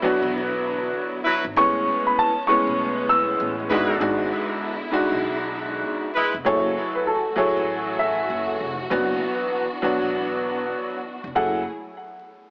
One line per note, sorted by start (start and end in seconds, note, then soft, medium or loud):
0.00 1.53 D3 medium
0.00 1.53 F#3 medium
0.00 1.18 F#3 loud
0.00 1.53 B3 medium
0.00 1.18 B3 medium
0.00 1.18 D4 medium
0.00 1.53 E4 medium
0.05 1.19 F#4 loud
0.22 0.91 E1 loud
1.25 1.44 F#3 loud
1.25 1.44 E4 medium
1.25 1.44 B4 loud
1.45 1.55 G#1 medium
1.56 1.84 A1 loud
1.56 3.68 A2 medium
1.56 2.29 A2 loud
1.56 6.42 G#3 medium
1.56 2.29 G#3 medium
1.56 6.42 B3 medium
1.56 2.30 B3 medium
1.56 3.68 C#4 loud
1.56 2.30 C#4 loud
1.56 2.03 C#6 loud
2.07 2.17 B5 medium
2.19 2.46 A5 medium
2.47 3.70 A2 medium
2.47 3.70 G#3 medium
2.47 3.71 B3 medium
2.47 3.71 C#4 medium
2.47 3.05 C#6 medium
2.67 3.36 B1 medium
3.09 3.56 E6 medium
3.40 3.68 A1 loud
3.70 3.98 G#1 loud
3.70 3.93 G#2 medium
3.70 6.43 D3 medium
3.70 4.12 G#3 medium
3.70 3.93 G#3 medium
3.70 3.93 D4 medium
3.70 4.12 E4 loud
3.70 6.43 E4 loud
3.70 3.94 F#4 loud
3.70 4.12 B4 loud
4.00 4.29 G#1 loud
4.00 4.73 G#2 loud
4.00 4.73 G#3 medium
4.00 4.74 D4 medium
4.00 4.74 F#4 loud
4.91 6.07 G#2 loud
4.91 6.07 G#3 medium
4.91 6.08 D4 medium
4.91 6.08 F#4 loud
5.12 5.81 B1 medium
6.15 6.35 G#3 loud
6.15 6.35 E4 loud
6.15 6.35 B4 loud
6.34 6.45 F1 medium
6.45 6.74 F#1 loud
6.45 11.32 E3 medium
6.45 7.18 F#3 medium
6.45 8.88 F#3 medium
6.45 8.88 A3 medium
6.45 7.18 E4 medium
6.45 11.32 F#4 loud
6.45 7.19 G#4 medium
6.45 7.19 A4 loud
6.45 6.92 C#5 loud
6.95 7.06 B4 medium
7.07 7.35 A4 medium
7.36 8.64 F#3 loud
7.36 8.65 E4 medium
7.36 8.65 G#4 medium
7.36 8.65 A4 loud
7.36 7.95 C#5 medium
7.57 8.26 A1 medium
7.99 8.45 E5 medium
8.30 8.57 F#1 medium
8.61 8.88 F1 medium
8.90 9.19 F#1 loud
8.90 9.63 F#3 loud
8.90 11.33 B3 medium
8.90 9.63 B3 medium
8.90 11.33 D4 medium
8.90 9.64 D4 medium
8.90 9.64 F#4 loud
9.82 10.97 F#3 loud
9.82 10.98 B3 medium
9.82 10.98 D4 medium
9.82 10.98 F#4 loud
10.02 10.71 E1 medium
11.24 11.35 F1 medium
11.35 11.64 F#1 loud
11.35 11.60 F#3 medium
11.35 11.64 F#3 medium
11.35 11.64 A3 medium
11.35 11.60 E4 medium
11.35 11.64 E4 medium
11.35 11.60 G#4 medium
11.35 11.64 G#4 medium
11.35 11.60 A4 medium
11.35 11.64 F#5 medium